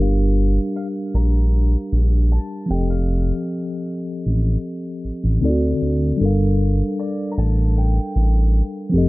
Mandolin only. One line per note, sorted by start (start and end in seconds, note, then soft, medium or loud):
0.76 0.87 F5 medium
1.15 2.27 A#5 loud
2.32 2.70 A5 medium
2.71 2.88 G5 medium
2.90 3.64 F5 medium
6.99 7.32 D5 medium
7.32 7.38 A#5 medium
7.39 7.77 A5 loud
7.78 9.09 G5 medium